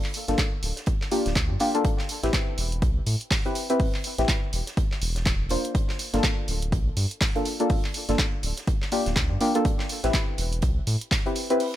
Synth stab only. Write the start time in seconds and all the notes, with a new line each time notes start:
0.28 A#3 D4 F4 A4
1.11 A#3 D4 F4 G4
1.60 A#3 D4 F4 G4
1.74 A#3 D4 F4 A4
2.23 C4 E4 G4 B4
3.45 C4 E4 G4 B4
3.70 C4 E4 G4 B4
4.18 C4 E4 G4 B4
5.50 A#3 D4 F4 C5
6.13 A#3 D4 F4 A4
7.35 A#3 D4 F4 A4
7.60 A#3 D4 F4 A4
8.09 A#3 D4 F4 A4
8.92 A#3 D4 F4 G4
9.41 A#3 D4 F4 G4
9.55 A#3 D4 F4 A4
10.04 C4 E4 G4 B4
11.26 C4 E4 G4 B4
11.50 C4 E4 G4 B4